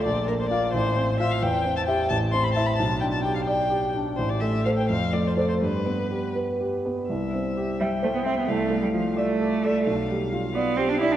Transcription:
X:1
M:6/8
L:1/16
Q:3/8=87
K:F
V:1 name="Violin"
d2 B c d2 c4 e f | [K:C] g3 a g2 a2 c' b a b | a2 g a g f g4 z2 | c d e2 f g f2 d c d c |
B6 z6 | e6 g6 | f6 e2 d2 e2 | f12 |]
V:2 name="Grand piano"
B,,,2 B,2 [Ff]2 A,,,2 C2 [Ff]2 | [K:C] E,,2 C2 [Ge]2 A,,,2 C2 [Ee]2 | B,,,2 D2 G2 d2 G2 D2 | A,,,2 A,2 [Ac]2 F,,2 A,2 [Ac]2 |
G,,2 B,2 G2 B2 G2 B,2 | C,,2 C2 G2 e2 c2 e2 | C,,2 A,2 F2 d2 A2 d2 | B,,,2 G,2 F2 d2 G2 d2 |]
V:3 name="Cello"
z12 | [K:C] z12 | z12 | z12 |
z12 | z6 G,2 A, B, C B, | A,3 G, F,2 A,6 | z6 B,2 C D E D |]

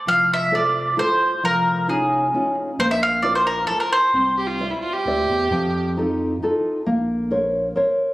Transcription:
X:1
M:3/4
L:1/16
Q:"Swing" 1/4=133
K:F
V:1 name="Mandolin"
f2 e2 d4 c4 | B4 _A6 z2 | c e f2 d c B2 A B c2- | c2 z8 z2 |
z12 | z12 |]
V:2 name="Nylon-string guitar"
F,4 [FAc]4 [FAc]4 | F,4 [_D_EF]4 [DEF]4 | B,4 [FBc]4 [FBc]4 | C4 [cde]4 [cde]4 |
F,4 [_EFA]4 [EFA]4 | B,4 [Bc_d]4 [Bcd]4 |]
V:3 name="Violin"
z12 | z12 | z12 | z2 G F2 E F G4- G- |
G3 z8 z | z12 |]
V:4 name="Sub bass" clef=bass
F,,,12 | F,,,12 | B,,,12 | C,,8 D,,2 E,,2 |
F,,12 | B,,,12 |]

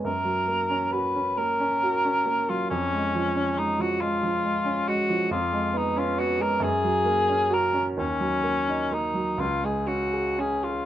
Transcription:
X:1
M:6/8
L:1/16
Q:3/8=45
K:F#
V:1 name="Cor anglais"
A4 B2 A4- A E | C4 D F E4 F2 | E2 D E F A G4 A2 | C4 D2 E G F2 G E |]
V:2 name="Grand piano"
F,, F, A, C F C A, C F C A, F, | E,, G, E, C G, E, G, E, G, C G, E, | E,, G, B, C B, G, F,, F, A, C F C | D,, F, A, D A, F, C,, G, C G C G |]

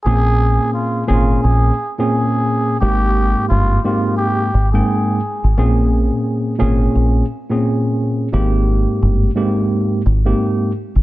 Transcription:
X:1
M:4/4
L:1/16
Q:"Swing 16ths" 1/4=87
K:Bbdor
V:1 name="Muted trumpet"
A4 F2 F2 A3 A4- A | G4 F2 F2 G3 A4- A | z16 | z16 |]
V:2 name="Tine electric piano"
[B,,B,CDA]6 [B,,B,CDA]4 z [B,,B,CDA]4- [B,,B,CDA] | [A,,A,B,CG]6 [A,,A,B,CG]4 z [A,,A,B,Cg]3 z2 | [B,,B,CDA]6 [B,,B,CDA]4 z [B,,B,CDA]4- [B,,B,CDA] | [A,,A,B,CG]6 [A,,A,B,CG]4 z [A,,A,B,CG]3 z2 |]
V:3 name="Fingered electric bass" clef=bass
B,,,4 z2 A,,,2 B,,,2 z6 | A,,,4 G,,,2 z4 A,,,2 z3 A,,, | B,,,4 z2 A,,,2 B,,,2 z6 | A,,,4 G,,,2 z4 A,,,2 z3 A,,, |]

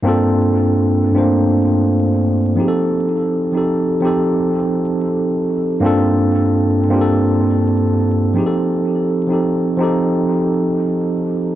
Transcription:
X:1
M:4/4
L:1/16
Q:"Swing 16ths" 1/4=83
K:Gm
V:1 name="Tine electric piano"
[G,,B,CDFA]4- [G,,B,CDFA] z [G,,A,B,CDFc]6 z2 [F,CEG_A=A]2- | [F,CEG_A=A]2 z [F,CEGA]2 z [F,CEGA]6 z4 | [G,,B,CDFA]4- [G,,B,CDFA] z [G,,B,CDFGA]6 z2 [F,CEG_A=A]2- | [F,CEG_A=A]2 z [F,CEGA]2 z [F,CEGA]6 z4 |]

